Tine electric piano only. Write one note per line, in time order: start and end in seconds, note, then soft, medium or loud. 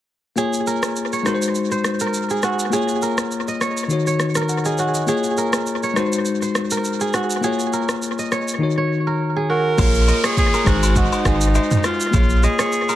0.36 1.25 A#3 medium
0.36 1.25 F4 medium
0.36 1.25 G#4 medium
0.36 1.26 C#5 medium
1.23 2.68 G#3 medium
1.23 2.69 D#4 medium
1.23 2.70 F#4 medium
1.28 1.34 A#4 medium
1.34 2.74 C5 medium
2.70 3.86 A#3 medium
2.70 3.87 F4 medium
2.70 3.88 G#4 medium
2.75 3.89 C#5 medium
3.88 5.04 D#3 medium
3.88 5.05 D#4 medium
3.88 5.06 F#4 medium
3.93 4.49 C#5 medium
4.49 4.64 F#5 medium
4.65 4.78 D#5 medium
4.78 4.94 C#5 medium
4.95 5.23 D#5 medium
5.07 5.95 A#3 medium
5.07 5.96 F4 medium
5.07 5.96 G#4 medium
5.07 5.97 C#5 medium
5.93 7.39 G#3 medium
5.93 7.40 D#4 medium
5.93 7.40 F#4 medium
5.99 7.41 C5 medium
7.41 8.57 A#3 medium
7.41 8.58 F4 medium
7.41 8.59 G#4 medium
7.46 8.60 C#5 medium
8.58 9.75 D#3 medium
8.58 9.76 D#4 medium
8.58 9.76 F#4 medium
8.63 9.77 C#5 medium
9.77 10.66 A#3 medium
9.77 10.66 F4 medium
9.77 10.67 G#4 medium
9.77 10.67 C#5 medium
10.64 12.09 G#3 medium
10.64 12.10 D#4 medium
10.64 12.11 F#4 medium
10.69 12.12 C5 medium
12.11 12.96 A#3 medium
12.11 12.96 F4 medium
12.11 12.96 G#4 medium
12.16 12.96 C#5 medium